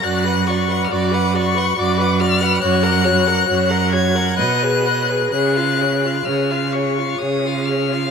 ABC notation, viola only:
X:1
M:3/4
L:1/16
Q:1/4=68
K:F#
V:1 name="Viola"
F B F B F B F B F B F B | F A F A F A F A B G B G | G E G E G E G E G E G E |]